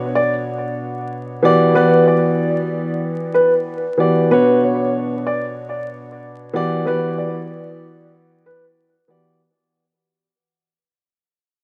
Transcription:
0, 0, Header, 1, 3, 480
1, 0, Start_track
1, 0, Tempo, 638298
1, 1322, Time_signature, 4, 2, 24, 8
1, 8747, End_track
2, 0, Start_track
2, 0, Title_t, "Upright piano"
2, 0, Program_c, 0, 0
2, 116, Note_on_c, 0, 74, 93
2, 247, Note_off_c, 0, 74, 0
2, 1319, Note_on_c, 0, 71, 93
2, 1536, Note_off_c, 0, 71, 0
2, 1559, Note_on_c, 0, 74, 74
2, 1921, Note_off_c, 0, 74, 0
2, 2514, Note_on_c, 0, 71, 80
2, 2646, Note_off_c, 0, 71, 0
2, 3243, Note_on_c, 0, 71, 96
2, 3458, Note_off_c, 0, 71, 0
2, 3485, Note_on_c, 0, 73, 71
2, 3700, Note_off_c, 0, 73, 0
2, 3960, Note_on_c, 0, 74, 83
2, 4090, Note_off_c, 0, 74, 0
2, 5165, Note_on_c, 0, 71, 91
2, 5379, Note_off_c, 0, 71, 0
2, 5403, Note_on_c, 0, 74, 66
2, 5762, Note_off_c, 0, 74, 0
2, 6362, Note_on_c, 0, 71, 74
2, 6491, Note_off_c, 0, 71, 0
2, 8747, End_track
3, 0, Start_track
3, 0, Title_t, "Grand piano"
3, 0, Program_c, 1, 0
3, 0, Note_on_c, 1, 47, 98
3, 0, Note_on_c, 1, 59, 81
3, 0, Note_on_c, 1, 62, 87
3, 0, Note_on_c, 1, 66, 93
3, 0, Note_on_c, 1, 73, 112
3, 1065, Note_off_c, 1, 59, 0
3, 1070, Note_off_c, 1, 66, 0
3, 1072, Note_on_c, 1, 52, 99
3, 1076, Note_on_c, 1, 59, 94
3, 1080, Note_off_c, 1, 47, 0
3, 1081, Note_on_c, 1, 66, 86
3, 1084, Note_off_c, 1, 62, 0
3, 1086, Note_on_c, 1, 67, 83
3, 1089, Note_off_c, 1, 73, 0
3, 1091, Note_on_c, 1, 74, 121
3, 1300, Note_off_c, 1, 52, 0
3, 1304, Note_off_c, 1, 59, 0
3, 1306, Note_off_c, 1, 66, 0
3, 1308, Note_off_c, 1, 67, 0
3, 1311, Note_off_c, 1, 74, 0
3, 1312, Note_on_c, 1, 52, 90
3, 1315, Note_on_c, 1, 59, 93
3, 1320, Note_on_c, 1, 66, 90
3, 1326, Note_on_c, 1, 67, 89
3, 1330, Note_on_c, 1, 74, 109
3, 2883, Note_off_c, 1, 52, 0
3, 2885, Note_off_c, 1, 59, 0
3, 2887, Note_off_c, 1, 66, 0
3, 2890, Note_off_c, 1, 67, 0
3, 2892, Note_off_c, 1, 74, 0
3, 2990, Note_on_c, 1, 52, 83
3, 2995, Note_on_c, 1, 59, 73
3, 2999, Note_on_c, 1, 66, 64
3, 3004, Note_on_c, 1, 67, 72
3, 3009, Note_on_c, 1, 74, 90
3, 3220, Note_off_c, 1, 52, 0
3, 3223, Note_off_c, 1, 59, 0
3, 3225, Note_off_c, 1, 66, 0
3, 3227, Note_off_c, 1, 67, 0
3, 3230, Note_off_c, 1, 74, 0
3, 3237, Note_on_c, 1, 47, 89
3, 3243, Note_on_c, 1, 59, 79
3, 3248, Note_on_c, 1, 62, 80
3, 3252, Note_on_c, 1, 66, 90
3, 3257, Note_on_c, 1, 73, 106
3, 4907, Note_off_c, 1, 59, 0
3, 4912, Note_off_c, 1, 66, 0
3, 4914, Note_on_c, 1, 52, 95
3, 4918, Note_on_c, 1, 59, 89
3, 4920, Note_off_c, 1, 47, 0
3, 4923, Note_on_c, 1, 66, 81
3, 4925, Note_off_c, 1, 62, 0
3, 4928, Note_on_c, 1, 67, 81
3, 4929, Note_off_c, 1, 73, 0
3, 4932, Note_on_c, 1, 74, 115
3, 5142, Note_off_c, 1, 52, 0
3, 5144, Note_off_c, 1, 59, 0
3, 5147, Note_off_c, 1, 66, 0
3, 5149, Note_off_c, 1, 67, 0
3, 5151, Note_off_c, 1, 74, 0
3, 5154, Note_on_c, 1, 52, 91
3, 5158, Note_on_c, 1, 59, 92
3, 5163, Note_on_c, 1, 66, 84
3, 5169, Note_on_c, 1, 67, 83
3, 5173, Note_on_c, 1, 74, 100
3, 6724, Note_off_c, 1, 52, 0
3, 6726, Note_off_c, 1, 59, 0
3, 6728, Note_off_c, 1, 66, 0
3, 6731, Note_off_c, 1, 67, 0
3, 6733, Note_off_c, 1, 74, 0
3, 6828, Note_on_c, 1, 52, 77
3, 6833, Note_on_c, 1, 59, 69
3, 6838, Note_on_c, 1, 66, 63
3, 6843, Note_on_c, 1, 67, 69
3, 6847, Note_on_c, 1, 74, 84
3, 7059, Note_off_c, 1, 52, 0
3, 7062, Note_off_c, 1, 59, 0
3, 7064, Note_off_c, 1, 66, 0
3, 7067, Note_off_c, 1, 67, 0
3, 7069, Note_off_c, 1, 74, 0
3, 8747, End_track
0, 0, End_of_file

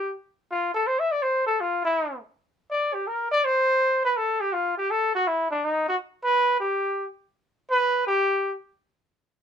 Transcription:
0, 0, Header, 1, 2, 480
1, 0, Start_track
1, 0, Tempo, 367197
1, 631, Time_signature, 4, 2, 24, 8
1, 12320, End_track
2, 0, Start_track
2, 0, Title_t, "Trumpet"
2, 0, Program_c, 0, 56
2, 0, Note_on_c, 0, 67, 75
2, 169, Note_off_c, 0, 67, 0
2, 665, Note_on_c, 0, 65, 77
2, 935, Note_off_c, 0, 65, 0
2, 967, Note_on_c, 0, 69, 84
2, 1138, Note_on_c, 0, 72, 78
2, 1158, Note_off_c, 0, 69, 0
2, 1301, Note_on_c, 0, 76, 82
2, 1321, Note_off_c, 0, 72, 0
2, 1458, Note_on_c, 0, 74, 81
2, 1478, Note_off_c, 0, 76, 0
2, 1599, Note_on_c, 0, 72, 79
2, 1619, Note_off_c, 0, 74, 0
2, 1903, Note_off_c, 0, 72, 0
2, 1913, Note_on_c, 0, 69, 81
2, 2099, Note_on_c, 0, 65, 73
2, 2119, Note_off_c, 0, 69, 0
2, 2393, Note_off_c, 0, 65, 0
2, 2413, Note_on_c, 0, 64, 84
2, 2845, Note_off_c, 0, 64, 0
2, 3540, Note_on_c, 0, 74, 82
2, 3836, Note_on_c, 0, 67, 72
2, 3856, Note_off_c, 0, 74, 0
2, 4019, Note_on_c, 0, 70, 72
2, 4039, Note_off_c, 0, 67, 0
2, 4314, Note_off_c, 0, 70, 0
2, 4328, Note_on_c, 0, 74, 106
2, 4506, Note_on_c, 0, 72, 97
2, 4526, Note_off_c, 0, 74, 0
2, 5277, Note_off_c, 0, 72, 0
2, 5290, Note_on_c, 0, 71, 84
2, 5452, Note_on_c, 0, 69, 80
2, 5472, Note_off_c, 0, 71, 0
2, 5757, Note_on_c, 0, 67, 82
2, 5777, Note_off_c, 0, 69, 0
2, 5921, Note_on_c, 0, 65, 74
2, 5940, Note_off_c, 0, 67, 0
2, 6224, Note_off_c, 0, 65, 0
2, 6242, Note_on_c, 0, 67, 88
2, 6411, Note_on_c, 0, 69, 98
2, 6430, Note_off_c, 0, 67, 0
2, 6709, Note_off_c, 0, 69, 0
2, 6729, Note_on_c, 0, 66, 90
2, 6895, Note_on_c, 0, 64, 79
2, 6915, Note_off_c, 0, 66, 0
2, 7191, Note_off_c, 0, 64, 0
2, 7199, Note_on_c, 0, 62, 86
2, 7380, Note_on_c, 0, 63, 80
2, 7400, Note_off_c, 0, 62, 0
2, 7673, Note_off_c, 0, 63, 0
2, 7688, Note_on_c, 0, 66, 86
2, 7784, Note_off_c, 0, 66, 0
2, 8155, Note_on_c, 0, 71, 94
2, 8594, Note_off_c, 0, 71, 0
2, 8628, Note_on_c, 0, 67, 74
2, 9231, Note_off_c, 0, 67, 0
2, 10072, Note_on_c, 0, 71, 98
2, 10511, Note_off_c, 0, 71, 0
2, 10545, Note_on_c, 0, 67, 90
2, 11149, Note_off_c, 0, 67, 0
2, 12320, End_track
0, 0, End_of_file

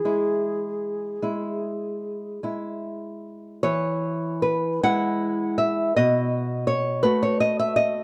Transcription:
0, 0, Header, 1, 3, 480
1, 0, Start_track
1, 0, Key_signature, 4, "major"
1, 0, Tempo, 795756
1, 2192, Time_signature, 12, 3, 24, 8
1, 3144, Tempo, 729927
1, 5002, End_track
2, 0, Start_track
2, 0, Title_t, "Flute"
2, 0, Program_c, 0, 73
2, 0, Note_on_c, 0, 68, 55
2, 1454, Note_off_c, 0, 68, 0
2, 5002, End_track
3, 0, Start_track
3, 0, Title_t, "Nylon-string guitar"
3, 0, Program_c, 1, 24
3, 29, Note_on_c, 1, 56, 27
3, 32, Note_on_c, 1, 64, 29
3, 713, Note_off_c, 1, 56, 0
3, 714, Note_off_c, 1, 64, 0
3, 738, Note_on_c, 1, 56, 27
3, 742, Note_on_c, 1, 64, 30
3, 1437, Note_off_c, 1, 56, 0
3, 1438, Note_off_c, 1, 64, 0
3, 1466, Note_on_c, 1, 56, 24
3, 1471, Note_on_c, 1, 64, 26
3, 2171, Note_off_c, 1, 56, 0
3, 2174, Note_off_c, 1, 64, 0
3, 2190, Note_on_c, 1, 73, 79
3, 2193, Note_on_c, 1, 52, 50
3, 2651, Note_off_c, 1, 73, 0
3, 2667, Note_on_c, 1, 71, 56
3, 2890, Note_off_c, 1, 52, 0
3, 2899, Note_off_c, 1, 71, 0
3, 2916, Note_on_c, 1, 56, 42
3, 2916, Note_on_c, 1, 78, 81
3, 2918, Note_on_c, 1, 64, 44
3, 3372, Note_off_c, 1, 78, 0
3, 3385, Note_on_c, 1, 76, 61
3, 3608, Note_off_c, 1, 56, 0
3, 3609, Note_off_c, 1, 64, 0
3, 3619, Note_off_c, 1, 76, 0
3, 3639, Note_on_c, 1, 75, 74
3, 3644, Note_on_c, 1, 47, 55
3, 4091, Note_off_c, 1, 75, 0
3, 4103, Note_on_c, 1, 73, 70
3, 4329, Note_off_c, 1, 47, 0
3, 4333, Note_off_c, 1, 73, 0
3, 4338, Note_on_c, 1, 71, 78
3, 4342, Note_on_c, 1, 57, 40
3, 4351, Note_on_c, 1, 66, 49
3, 4461, Note_off_c, 1, 71, 0
3, 4468, Note_on_c, 1, 73, 67
3, 4582, Note_off_c, 1, 73, 0
3, 4585, Note_on_c, 1, 75, 69
3, 4704, Note_off_c, 1, 75, 0
3, 4711, Note_on_c, 1, 76, 70
3, 4817, Note_off_c, 1, 76, 0
3, 4820, Note_on_c, 1, 75, 78
3, 5002, Note_off_c, 1, 57, 0
3, 5002, Note_off_c, 1, 66, 0
3, 5002, Note_off_c, 1, 75, 0
3, 5002, End_track
0, 0, End_of_file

